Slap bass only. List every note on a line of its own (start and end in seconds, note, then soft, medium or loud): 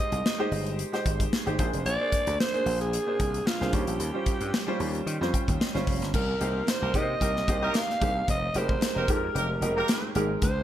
0.12 0.21 C2 medium
0.51 0.82 G1 medium
1.05 1.25 G#1 medium
1.47 1.56 G#1 medium
1.59 1.70 A#1 medium
1.74 1.83 F1 medium
1.85 1.96 A#1 medium
2.27 2.36 D2 medium
2.66 2.97 A#1 medium
3.20 3.40 C2 medium
3.61 3.70 C2 medium
3.73 3.84 D#2 medium
3.87 3.97 A#1 medium
3.99 4.10 D#2 medium
4.41 4.50 G2 medium
4.80 5.00 D#2 medium
5.06 5.17 D#3 loud
5.21 5.30 F2 medium
5.48 5.57 D#2 medium
5.75 5.84 G1 medium
5.87 6.02 F1 medium
6.02 6.11 G1 medium
6.14 6.34 C2 medium
6.41 6.61 C2 medium
6.82 6.91 C2 medium
6.94 7.14 C3 medium
7.21 7.41 C2 medium
7.48 7.68 C2 medium
8.01 8.21 C2 medium
8.28 8.48 F1 loud
8.55 8.75 F1 medium
8.96 9.05 F1 medium
9.08 9.28 F2 medium
9.35 9.55 F1 medium
9.61 9.81 F1 medium
10.15 10.35 G#1 medium
10.42 10.62 C#2 medium